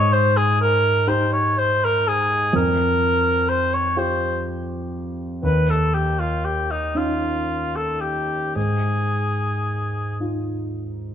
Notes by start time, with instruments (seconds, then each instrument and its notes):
Already playing: grand piano G#2, cor anglais C#5
0.13 cor anglais C5
0.37 cor anglais G#4
0.61 cor anglais A#4
1.07 grand piano D#4 G4, cor anglais C5
1.32 cor anglais C#5
1.58 cor anglais C5
1.85 cor anglais A#4
2.08 cor anglais G#4
2.53 grand piano F2, cor anglais A#4
3.49 cor anglais C5
3.74 cor anglais C#5
3.97 grand piano F4 G4, cor anglais C5
5.43 grand piano D#2, cor anglais B4
5.70 cor anglais A4
5.94 cor anglais G4
6.20 cor anglais F4
6.45 cor anglais G4
6.71 cor anglais D#4
6.95 grand piano C#4 D#4, cor anglais F4
7.76 cor anglais A4
8.01 cor anglais G4
8.56 grand piano G#2, cor anglais G#4
10.20 grand piano D#4 F4